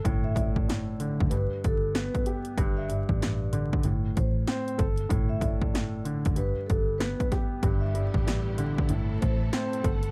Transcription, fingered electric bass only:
X:1
M:4/4
L:1/16
Q:"Swing 16ths" 1/4=95
K:Em
V:1 name="Fingered electric bass" clef=bass
G,,,6- G,,, F,,, G,,, z G,,,3 z3 | G,,,3 A,,,4- A,,, G,,,2 A,,,2 z2 G,,,2 | G,,,6- G,,, F,,, G,,, z G,,,3 z3 | G,,,3 A,,,4- A,,, G,,,2 A,,,2 z2 G,,,2 |]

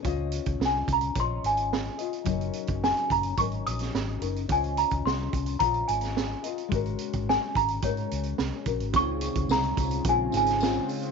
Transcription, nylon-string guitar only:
X:1
M:4/4
L:1/8
Q:1/4=108
K:Db
V:1 name="Nylon-string guitar"
[DFce]4 [DFce]3 [Fce] | [G,DEB]4 [G,DEB]3 [DEB] | [DFce]4 [DFce]3 [Fce] | [A,DGB]4 [A,DGB]3 [DGB] |
[D,CFA]4 [D,CFA]2 [D,CFA]2 |]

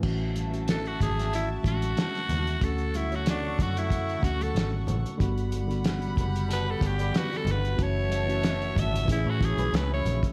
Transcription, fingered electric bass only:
X:1
M:4/4
L:1/16
Q:"Swing 16ths" 1/4=93
K:A
V:1 name="Fingered electric bass" clef=bass
A,,,6 G,,,4 A,,,2 z2 ^D,,2 | D,,6 F,,4 D,,2 G,,,2 A,,, z | =G,,,6 F,,,4 G,,,2 z2 G,,,2 | F,,,6 G,,,2 A,,, A,, A,,, B,,, C,,2 _B,,, z |]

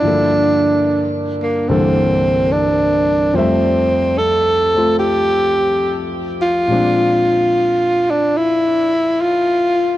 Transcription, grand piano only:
X:1
M:4/4
L:1/8
Q:"Swing" 1/4=72
K:F
V:1 name="Grand piano" clef=bass
[G,,D,F,B,A]4 [C,,G,,D,E,B,A]4 | [F,,F,G,A,e]3 [A,CF]4- [A,CF] | [B,,F,_A,CD]8 |]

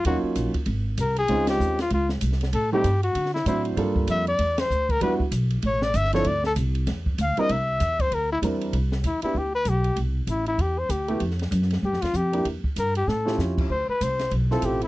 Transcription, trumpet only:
X:1
M:4/4
L:1/8
Q:"Swing" 1/4=194
K:Cmix
V:1 name="Trumpet"
_G z4 z B _A- | _A G2 F F z3 | A G2 _G2 E E z | z2 e d2 c2 B |
=B z3 _d =d e _d | d A z4 f _e | e3 c B E z2 | [K:C] z2 E E G B G2 |
z2 E E G c G2 | z4 G F G2 | z2 _B G A2 z2 | c B c2 z A G E |]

